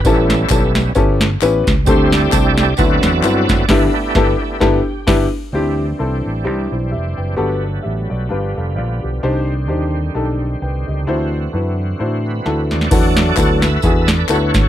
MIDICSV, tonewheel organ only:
0, 0, Header, 1, 2, 480
1, 0, Start_track
1, 0, Tempo, 457666
1, 48, Time_signature, 4, 2, 24, 8
1, 6288, Tempo, 460829
1, 15340, End_track
2, 0, Start_track
2, 0, Title_t, "Tonewheel organ"
2, 0, Program_c, 0, 16
2, 41, Note_on_c, 0, 55, 57
2, 50, Note_on_c, 0, 59, 55
2, 62, Note_on_c, 0, 61, 71
2, 62, Note_on_c, 0, 69, 92
2, 63, Note_on_c, 0, 64, 58
2, 756, Note_off_c, 0, 55, 0
2, 761, Note_off_c, 0, 59, 0
2, 762, Note_off_c, 0, 69, 0
2, 768, Note_off_c, 0, 61, 0
2, 778, Note_on_c, 0, 55, 46
2, 781, Note_on_c, 0, 59, 48
2, 788, Note_on_c, 0, 61, 63
2, 972, Note_off_c, 0, 64, 0
2, 975, Note_off_c, 0, 55, 0
2, 977, Note_off_c, 0, 59, 0
2, 980, Note_off_c, 0, 61, 0
2, 1942, Note_on_c, 0, 55, 59
2, 1956, Note_on_c, 0, 60, 57
2, 1958, Note_on_c, 0, 69, 74
2, 1959, Note_on_c, 0, 64, 64
2, 1961, Note_on_c, 0, 67, 75
2, 1962, Note_on_c, 0, 72, 115
2, 2218, Note_off_c, 0, 67, 0
2, 2218, Note_off_c, 0, 69, 0
2, 2230, Note_on_c, 0, 69, 80
2, 2231, Note_on_c, 0, 67, 82
2, 2236, Note_on_c, 0, 74, 119
2, 2241, Note_off_c, 0, 72, 0
2, 2869, Note_off_c, 0, 55, 0
2, 2876, Note_off_c, 0, 60, 0
2, 2878, Note_off_c, 0, 64, 0
2, 2879, Note_off_c, 0, 67, 0
2, 2879, Note_off_c, 0, 69, 0
2, 2909, Note_off_c, 0, 74, 0
2, 2913, Note_on_c, 0, 54, 60
2, 2914, Note_on_c, 0, 59, 52
2, 2916, Note_on_c, 0, 60, 58
2, 2920, Note_on_c, 0, 64, 65
2, 2921, Note_on_c, 0, 66, 71
2, 2922, Note_on_c, 0, 74, 109
2, 2924, Note_on_c, 0, 69, 77
2, 3835, Note_off_c, 0, 54, 0
2, 3835, Note_off_c, 0, 59, 0
2, 3836, Note_off_c, 0, 60, 0
2, 3838, Note_off_c, 0, 64, 0
2, 3839, Note_off_c, 0, 66, 0
2, 3840, Note_off_c, 0, 69, 0
2, 3860, Note_on_c, 0, 57, 67
2, 3870, Note_on_c, 0, 59, 53
2, 3872, Note_on_c, 0, 64, 71
2, 3872, Note_on_c, 0, 71, 92
2, 3877, Note_on_c, 0, 62, 75
2, 3910, Note_off_c, 0, 74, 0
2, 4142, Note_off_c, 0, 59, 0
2, 4144, Note_off_c, 0, 64, 0
2, 4144, Note_on_c, 0, 67, 95
2, 4155, Note_off_c, 0, 71, 0
2, 4155, Note_on_c, 0, 59, 64
2, 4156, Note_on_c, 0, 64, 65
2, 4583, Note_off_c, 0, 57, 0
2, 4620, Note_off_c, 0, 64, 0
2, 4622, Note_off_c, 0, 59, 0
2, 4630, Note_on_c, 0, 57, 54
2, 4633, Note_on_c, 0, 64, 54
2, 4635, Note_on_c, 0, 59, 42
2, 4798, Note_off_c, 0, 62, 0
2, 4820, Note_off_c, 0, 57, 0
2, 4821, Note_off_c, 0, 64, 0
2, 4822, Note_off_c, 0, 59, 0
2, 5548, Note_off_c, 0, 67, 0
2, 5793, Note_on_c, 0, 62, 52
2, 5795, Note_on_c, 0, 52, 54
2, 5795, Note_on_c, 0, 60, 59
2, 5798, Note_on_c, 0, 55, 63
2, 7702, Note_off_c, 0, 62, 0
2, 7703, Note_off_c, 0, 52, 0
2, 7704, Note_off_c, 0, 60, 0
2, 7722, Note_on_c, 0, 57, 60
2, 7723, Note_on_c, 0, 54, 56
2, 7725, Note_on_c, 0, 59, 51
2, 8677, Note_off_c, 0, 57, 0
2, 8678, Note_off_c, 0, 54, 0
2, 8691, Note_on_c, 0, 53, 58
2, 8692, Note_on_c, 0, 50, 57
2, 9632, Note_off_c, 0, 59, 0
2, 9644, Note_off_c, 0, 53, 0
2, 9658, Note_on_c, 0, 60, 57
2, 9660, Note_on_c, 0, 51, 55
2, 11533, Note_off_c, 0, 55, 0
2, 11563, Note_off_c, 0, 51, 0
2, 11572, Note_on_c, 0, 52, 60
2, 11576, Note_on_c, 0, 66, 71
2, 12815, Note_on_c, 0, 71, 68
2, 13017, Note_off_c, 0, 71, 0
2, 13029, Note_on_c, 0, 71, 69
2, 13294, Note_on_c, 0, 74, 76
2, 13302, Note_off_c, 0, 71, 0
2, 13457, Note_off_c, 0, 50, 0
2, 13462, Note_off_c, 0, 60, 0
2, 13476, Note_off_c, 0, 52, 0
2, 13477, Note_off_c, 0, 66, 0
2, 13493, Note_off_c, 0, 74, 0
2, 13505, Note_on_c, 0, 74, 99
2, 13508, Note_on_c, 0, 54, 62
2, 13514, Note_on_c, 0, 57, 53
2, 13520, Note_on_c, 0, 69, 75
2, 13523, Note_on_c, 0, 66, 68
2, 13527, Note_on_c, 0, 62, 67
2, 13947, Note_off_c, 0, 74, 0
2, 13951, Note_on_c, 0, 78, 113
2, 14078, Note_off_c, 0, 78, 0
2, 14213, Note_off_c, 0, 54, 0
2, 14217, Note_off_c, 0, 57, 0
2, 14221, Note_on_c, 0, 76, 108
2, 14223, Note_off_c, 0, 62, 0
2, 14237, Note_off_c, 0, 69, 0
2, 14249, Note_on_c, 0, 71, 80
2, 14250, Note_on_c, 0, 69, 79
2, 14425, Note_off_c, 0, 66, 0
2, 14697, Note_on_c, 0, 74, 96
2, 14725, Note_off_c, 0, 76, 0
2, 14912, Note_on_c, 0, 73, 104
2, 14921, Note_off_c, 0, 69, 0
2, 14925, Note_off_c, 0, 74, 0
2, 14931, Note_on_c, 0, 66, 69
2, 14933, Note_on_c, 0, 69, 65
2, 15160, Note_off_c, 0, 71, 0
2, 15340, Note_off_c, 0, 66, 0
2, 15340, Note_off_c, 0, 69, 0
2, 15340, Note_off_c, 0, 73, 0
2, 15340, End_track
0, 0, End_of_file